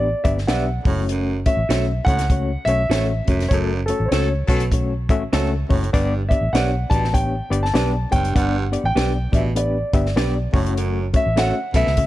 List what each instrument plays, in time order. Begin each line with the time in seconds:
Already playing: fingered electric bass A1, grand piano D5
0.24 fingered electric bass G1, reed electric piano B3 D4 G4 D5, grand piano E5, kick, closed hi-hat
0.38 snare
0.47 fingered electric bass B1, reed electric piano B3 D4 G4 E5, clean electric guitar G4 B4 D5, grand piano F#5, snare, closed hi-hat
0.84 fingered electric bass F#1, baritone saxophone A2, reed electric piano G#3 C#4 F#4 C#5, kick, open hi-hat
0.93 reed electric piano A3
1.09 baritone saxophone F#2, closed hi-hat
1.46 reed electric piano A3 C#4 F#4 C#5, grand piano E5, kick, closed hi-hat
1.57 fingered electric bass A1
1.69 fingered electric bass B1, reed electric piano A3 C#4 F#4 E5, clean electric guitar F#4 A4 C#5, snare, closed hi-hat
2.05 fingered electric bass C#2, baritone saxophone A2, reed electric piano A3 C#4 F#4 C#5, grand piano F#5, kick, closed hi-hat
2.19 snare, closed hi-hat
2.30 reed electric piano A3 C#4 F#4 C#5, kick, closed hi-hat
2.65 fingered electric bass B1, reed electric piano A3 C#4 F#4 C#5, grand piano E5, closed hi-hat
2.89 fingered electric bass A1, reed electric piano A3 C#4 F#4 C#5, clean electric guitar F#4 A4 C#5, snare, closed hi-hat
3.27 fingered electric bass F1, baritone saxophone F#2, reed electric piano A3 C#4 F#4 C#5, kick, closed hi-hat
3.40 snare, closed hi-hat
3.49 fingered electric bass F#1, baritone saxophone F#2, reed electric piano A3, grand piano C#5, kick, closed hi-hat
3.53 reed electric piano C#4 F#4 A4
3.86 reed electric piano A3 C#4 F#4, grand piano A4, closed hi-hat
3.90 reed electric piano C#5
4.00 fingered electric bass A1
4.05 grand piano C5 C#5
4.11 fingered electric bass C#2, horn section F#3 C#4 A4, reed electric piano A3 C#4 F#4 C#5, clean electric guitar F#4 A4 C#5, snare, closed hi-hat
4.47 fingered electric bass B1, baritone saxophone B2, horn section F#3 C#4 A4, reed electric piano A3 C#4 F#4 C#5, kick, closed hi-hat
4.60 closed hi-hat
4.72 reed electric piano A3 C#4 F#4 C#5, kick, closed hi-hat
5.09 fingered electric bass A1, reed electric piano A3 C#4 F#4 E5, kick, closed hi-hat
5.33 fingered electric bass C#2, reed electric piano A3 C#4 F#4 A4, clean electric guitar F#4 A4 C#5, snare, closed hi-hat
5.69 fingered electric bass F#1, baritone saxophone A2, reed electric piano A3 C#4 F#4 C#5, kick, open hi-hat
5.84 closed hi-hat
5.92 fingered electric bass G1, baritone saxophone G2, reed electric piano B3 D4 G4 D5, kick, closed hi-hat
6.29 reed electric piano B3 D4 G4 D5, grand piano E5, kick, closed hi-hat
6.41 fingered electric bass A1
6.53 fingered electric bass B1, reed electric piano B3 D4 G4 C#5, clean electric guitar G4 B4 D5, grand piano F#5, snare, closed hi-hat
6.90 fingered electric bass A1, baritone saxophone B2, reed electric piano B3 D4 G4 D5, grand piano A5, kick, closed hi-hat
7.04 snare
7.13 reed electric piano B3 D4 G4 C#5, grand piano G5, kick, closed hi-hat
7.50 fingered electric bass G1, reed electric piano B3 D4 G4 D5, closed hi-hat
7.63 grand piano A5, snare
7.74 fingered electric bass B1, reed electric piano B3 D4 G4 D5, clean electric guitar G4 B4 D5, snare, closed hi-hat
8.11 fingered electric bass F#1, baritone saxophone G2, reed electric piano B3 D4 G4 C#5, grand piano G5, kick, closed hi-hat
8.25 closed hi-hat
8.35 fingered electric bass G1, baritone saxophone G2, reed electric piano B3 D4 G4 D5, grand piano F#5, kick, closed hi-hat
8.72 reed electric piano B3 D4 G4 D5, closed hi-hat
8.84 fingered electric bass A1, grand piano G5
8.95 fingered electric bass B1, reed electric piano B3 D4 G4 D5, clean electric guitar G4 B4 D5, snare, closed hi-hat
9.32 fingered electric bass A1, baritone saxophone B2, reed electric piano B3 D4 G4 D5, grand piano E5, kick, closed hi-hat
9.55 reed electric piano B3 D4 G4 B4, grand piano D5, closed hi-hat
9.93 fingered electric bass G1, reed electric piano B3 D4 G4 E5, kick, closed hi-hat
10.06 snare
10.16 fingered electric bass B1, reed electric piano B3 D4 G4 D5, clean electric guitar G4 B4 D5, snare, closed hi-hat
10.53 fingered electric bass F#1, baritone saxophone A2, reed electric piano A3 C#4 F#4 C#5, kick, open hi-hat
10.66 closed hi-hat
10.76 baritone saxophone F#2, closed hi-hat
11.13 reed electric piano A3 C#4 F#4 C#5, grand piano E5, kick, closed hi-hat
11.26 fingered electric bass A1
11.36 reed electric piano A3 C#4 F#4 E5, clean electric guitar F#4 A4 C#5, grand piano F#5, snare, closed hi-hat
11.74 fingered electric bass B1, baritone saxophone B2, reed electric piano A3 C#4 F#4 A4, grand piano E5, kick, closed hi-hat
11.87 fingered electric bass C#2, snare
11.97 reed electric piano A3 C#4 F#4 E5, kick, closed hi-hat